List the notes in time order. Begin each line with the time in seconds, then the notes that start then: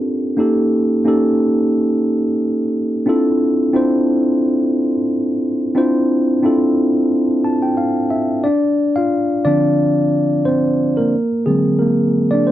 Already playing: C4 D4 F4 G4 A4
0.37 A#3 C#4 D#4 G4 A4
1.05 A#3 C#4 D#4 G4 A4
3.06 C4 D4 E4 F4 A4
3.73 C4 D4 E4 F4 C5
5.75 C4 D4 E4 F4 C5
6.42 C4 D4 E4 F4 A4
7.44 A5
7.62 G5
7.77 F5
8.10 E5
8.44 D4 D5
8.96 F4 F5
9.45 D3 F3 C4 D4 D5
10.45 C4 C5
10.97 A#3 A#4
11.46 D3 F#3 G#3 C4 G#4
11.79 A#3 A#4
12.31 D4 D5
12.47 C5